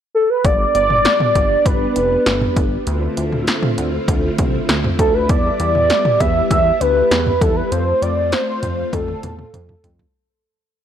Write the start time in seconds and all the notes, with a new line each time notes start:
0.15 A4
0.30 B4
0.45 G1 G3 B3 D4 D5, kick, closed hi-hat
0.75 G1 D5, closed hi-hat
0.90 mid tom
1.05 snare, closed hi-hat
1.20 mid tom
1.35 G1, kick, closed hi-hat
1.66 G1 B4, kick, closed hi-hat
1.96 F1, closed hi-hat
2.26 G1, snare, closed hi-hat
2.41 mid tom
2.56 G1, kick, closed hi-hat
2.87 D2 D3 A3 C4 E4 F4, closed hi-hat
3.17 D2, closed hi-hat
3.32 mid tom
3.47 snare, closed hi-hat
3.63 mid tom
3.78 D2, closed hi-hat
4.08 D2, kick, closed hi-hat
4.38 C2, kick, closed hi-hat
4.69 D2, snare, closed hi-hat
4.84 mid tom
4.99 D2 A4, kick, closed hi-hat
5.14 B4
5.29 E2 G3 B3 D5, kick, closed hi-hat
5.60 E2, closed hi-hat
5.75 mid tom
5.90 snare, closed hi-hat
6.05 mid tom
6.20 E2 E5, kick, closed hi-hat
6.50 E2 E5, kick, closed hi-hat
6.80 D2 B4, closed hi-hat
7.11 E2, snare, closed hi-hat
7.27 mid tom
7.41 E2 A4, kick, closed hi-hat
7.56 B4
7.71 F2 A3 C4 F4 C5, closed hi-hat
8.02 F2 D5, closed hi-hat
8.32 C5, snare, closed hi-hat
8.63 F2, closed hi-hat, mid tom
8.93 F2 A4, kick, closed hi-hat, high tom
9.08 high tom
9.23 E2, closed hi-hat, mid tom
9.39 mid tom
9.54 F2, closed hi-hat, mid tom
9.69 mid tom
9.84 F2, closed hi-hat, floor tom
9.99 floor tom